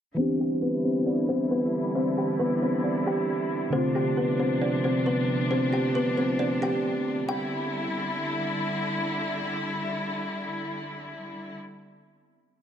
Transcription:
0.14 D3 E3 G3 B3 E4 C5
0.18 C4 D4 G4
0.40 G4 G5
0.62 B3 B4
0.84 C4 C5
1.06 D4 D5
1.29 C4 C5
1.51 B3 B4
1.95 C4 C5
2.18 G4 G5
2.39 B3 B4
2.62 C4 C5
2.84 D4 D5
3.07 G4 G5
3.70 C3 D3 F3 A3 C4 D4 C5
3.74 C3 F4
3.95 G4 G5
4.17 B3 B4
4.39 C4 C5
4.62 D4 D5
4.84 C4 C5
5.06 B3 B4
5.51 C4 C5
5.73 G4 G5
5.95 B3 B4
6.17 C4 C5
6.39 D4 D5
6.62 G4 G5
7.29 D3 G3 E4 G5

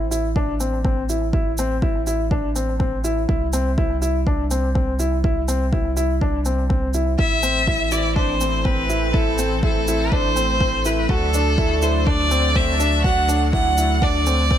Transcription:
Already playing: A1
0.11 E4, shaker
0.36 D4, kick
0.60 C4, shaker
0.85 C4, kick
1.09 E4, shaker
1.33 E4, kick
1.58 C4, shaker
1.82 E4, kick
2.07 E4, shaker
2.31 D4, kick
2.56 C4, shaker
2.80 C4, kick
3.04 E4, shaker
3.29 C2 E4, kick
3.53 C4, shaker
3.78 E4, kick
4.02 E4, shaker
4.27 D4, kick
4.51 C4, shaker
4.75 C4, kick
4.99 E4, shaker
5.24 E4, kick
5.48 C4, shaker
5.73 E4, kick
5.97 E4, shaker
6.21 D4, kick
6.45 C4, shaker
6.70 C4, kick
6.94 E4, shaker
7.18 A1 E3 A3 C4 E4 E5, kick
7.43 C4, shaker
7.67 E4, kick
7.91 E4 D5, shaker
8.15 D4 C5, kick
8.41 C4, shaker
8.65 C4 B4, kick
8.90 E4, shaker
9.13 E4 A4, kick
9.38 C4, shaker
9.63 E4 A4, kick
9.88 E4, shaker
10.12 D4 C5, kick
10.36 C4, shaker
10.61 C4, kick
10.85 E4 B4, shaker
11.09 D2 F#3 D4 F#4 A4, kick
11.34 D4, shaker
11.58 E4, kick
11.82 E4 C5, shaker
12.06 D4 D5, kick
12.31 C4, shaker
12.55 C4 E5, kick
12.79 D4, shaker
13.04 F#4 F#5, kick
13.29 D4, shaker
13.52 E4 F#5, kick
13.78 E4, shaker
14.02 D4 D5, kick
14.26 C4, shaker
14.51 C4, kick

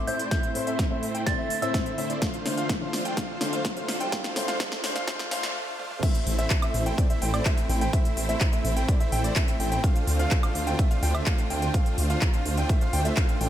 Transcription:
Already playing: A2 A3 E4 C5, riser
0.07 A2 A3 C4 E4 C5 E5 G6, open hi-hat
0.19 A3 C4 E4 C5 D5, closed hi-hat
0.31 A3 C4 E4 C5 E5 G6, kick, snare, closed hi-hat
0.43 closed hi-hat
0.54 A2 A3 C4 E4 C5, open hi-hat
0.67 A3 C4 E4 C5 E5, closed hi-hat
0.79 kick, snare, closed hi-hat
0.90 A2 A3 C4 E4 C5 E5
1.03 open hi-hat
1.15 A3 C4 E4 C5 G5, closed hi-hat
1.26 A2 A3 C4 E4 C5 D5 A6, kick, snare, closed hi-hat
1.38 A3 C4 E4 C5 E5
1.50 open hi-hat
1.62 A2 A3 C4 E4 C5 E5 E6, closed hi-hat
1.74 E5, kick, snare, closed hi-hat
1.86 closed hi-hat
1.97 D3 A3 C4 E4 C5 E5, open hi-hat
2.10 A3 C4 E4 C5 D5, closed hi-hat
2.22 D2 D3 A3 D4 F4 C5 F5, kick, snare, closed hi-hat
2.34 closed hi-hat
2.45 D3 A3 D4 F4 C5, snare, open hi-hat
2.57 A3 D4 F4 C5 F5, closed hi-hat
2.69 kick, snare, closed hi-hat
2.81 D3 A3 D4 F4 C5 F5
2.93 snare, open hi-hat
3.05 A3 D4 F4 C5 G5, closed hi-hat
3.17 A3 D4 F4 C5 F5, kick, snare, closed hi-hat
3.40 D3 A3 D4 F4 C5, snare, open hi-hat
3.53 A3 D4 F4 C5 F5, closed hi-hat
3.65 kick, snare, closed hi-hat
3.76 D3 A3 D4 F4 C5 F5, closed hi-hat
3.88 snare, open hi-hat
4.00 A3 D4 F4 C5 G5, closed hi-hat
4.12 A3 D4 F4 C5 F5, kick, snare, closed hi-hat
4.24 snare, closed hi-hat
4.36 D3 A3 D4 F4 C5, snare, open hi-hat
4.48 A3 D4 F4 C5 F5, snare, closed hi-hat
4.60 A3 D4, kick, snare, closed hi-hat
4.72 snare
4.83 D3 A3 D4 F4 C5, snare, open hi-hat
4.96 A3 D4 F4 C5 F5, snare, closed hi-hat
5.07 D3 A3 D4 F4 C5 F5, kick, snare, closed hi-hat
5.19 snare, closed hi-hat
5.31 D3 A3 D4 F4 C5 F5, snare, open hi-hat
5.43 snare, closed hi-hat
5.55 A3 D4 F4 C5 F5
5.79 A3 D4 F4 C5 F5, high tom
5.91 mid tom
6.03 A3 C4 E4 C5 E5, kick, closed hi-hat, crash
6.15 closed hi-hat
6.27 A1, open hi-hat
6.39 A3 C4 E4 C5 E5, closed hi-hat
6.50 kick, clap, closed hi-hat
6.62 A3 C4 E4 C5 E5, closed hi-hat, high woodblock
6.74 A1, open hi-hat
6.86 A3 C4 E4 C5 G5, closed hi-hat
6.98 A3 C4 E4 C5 D5, kick, closed hi-hat
7.10 A3 C4 E4 C5 E5, closed hi-hat
7.22 A1 A3 C4 E4 C5 G5, open hi-hat
7.34 A3 C4 E4 C5 D5, closed hi-hat, high woodblock
7.45 E4 E5, kick, clap, closed hi-hat
7.58 closed hi-hat
7.69 A1 A3 C4 E4 C5 G5, open hi-hat
7.81 A3 C4 E4 C5 G5, closed hi-hat
7.93 A3 E4 C5 E5, kick, closed hi-hat
8.05 closed hi-hat
8.17 A1, open hi-hat
8.29 A3 C4 E4 C5 E5, closed hi-hat
8.41 kick, clap, closed hi-hat
8.53 A3 C4 E4 C5 E5, closed hi-hat
8.65 A1, open hi-hat
8.77 A3 C4 E4 C5 G5, closed hi-hat
8.88 A3 C4 E4 C5 D5, kick, closed hi-hat
9.00 A3 C4 E4 C5 E5, closed hi-hat
9.12 A1 A3 C4 E4 C5 G5, open hi-hat
9.24 A3 C4 E4 C5 D5, closed hi-hat
9.36 C4 E4 E5, kick, clap, closed hi-hat
9.48 closed hi-hat
9.60 A1 A3 C4 E4 C5 G5, open hi-hat
9.72 A3 C4 E4 C5 G5, closed hi-hat
9.84 D3 A3 D4 F4 F5, kick, closed hi-hat
9.96 closed hi-hat
10.07 D2, open hi-hat
10.19 A3 D4 F4 C5 F5, closed hi-hat
10.31 kick, clap, closed hi-hat
10.43 A3 D4 F4 C5 F5, closed hi-hat, high woodblock
10.55 D2, open hi-hat
10.67 A3 D4 F4 C5 G5, closed hi-hat
10.79 A3 D4 F4 C5 E5, kick, closed hi-hat
10.91 A3 D4 F4 C5 F5, closed hi-hat
11.03 D2 A3 D4 F4 C5 G5, open hi-hat
11.15 A3 D4 F4 C5 E5, closed hi-hat, high woodblock
11.26 A3 D4 F4 C5 F5, kick, clap, closed hi-hat
11.38 closed hi-hat
11.50 D2 A3 D4 F4 C5 G5, open hi-hat
11.62 A3 D4 F4 C5 G5, closed hi-hat
11.74 A3 D4 F4 C5 F5, kick, closed hi-hat
11.86 closed hi-hat
11.98 D2, open hi-hat
12.10 A3 D4 F4 C5 F5, closed hi-hat
12.22 kick, clap, closed hi-hat
12.34 A3 D4 F4 C5 F5, closed hi-hat
12.46 D2, open hi-hat
12.57 A3 D4 F4 C5 G5, closed hi-hat
12.69 A3 D4 F4 C5 E5, kick, closed hi-hat
12.81 A3 D4 F4 C5 F5, closed hi-hat
12.93 D2 A3 D4 F4 C5 G5, open hi-hat
13.05 A3 D4 F4 C5 E5, closed hi-hat
13.17 A3 D4 F4 C5 F5, kick, clap, closed hi-hat
13.29 closed hi-hat
13.41 A1 A3 D4 F4 C5 G5, open hi-hat

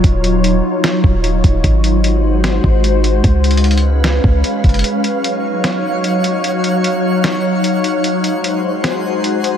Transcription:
Already playing: F#3 D#4 F4 C#5
0.04 D#1, kick, closed hi-hat
0.24 closed hi-hat
0.44 closed hi-hat
0.84 snare, closed hi-hat
1.04 D#1, kick
1.24 closed hi-hat
1.44 D#1, kick, closed hi-hat
1.64 G#1 G#3 F#4 C5, kick, closed hi-hat
1.84 closed hi-hat
2.04 closed hi-hat
2.44 snare, closed hi-hat
2.64 G#1, kick
2.84 closed hi-hat
3.04 closed hi-hat
3.24 C#2 C#4 B4 F5, kick, closed hi-hat
3.44 closed hi-hat
3.51 closed hi-hat
3.57 closed hi-hat
3.64 closed hi-hat
3.71 closed hi-hat
3.78 closed hi-hat
4.04 snare, closed hi-hat
4.24 C#2, kick
4.44 closed hi-hat
4.64 F#1, kick, closed hi-hat
4.69 closed hi-hat
4.74 closed hi-hat
4.79 closed hi-hat
4.84 F#3 D#4 F#4 C#5 F5 C#6, closed hi-hat
5.04 closed hi-hat
5.24 closed hi-hat
5.64 snare, closed hi-hat
6.04 closed hi-hat
6.24 closed hi-hat
6.44 closed hi-hat
6.64 closed hi-hat
6.84 closed hi-hat
7.24 snare, closed hi-hat
7.64 closed hi-hat
7.84 closed hi-hat
8.04 G#3 F#4 G#4 C5 F#5 C6, closed hi-hat
8.24 closed hi-hat
8.44 closed hi-hat
8.84 snare, closed hi-hat
9.24 closed hi-hat
9.44 closed hi-hat

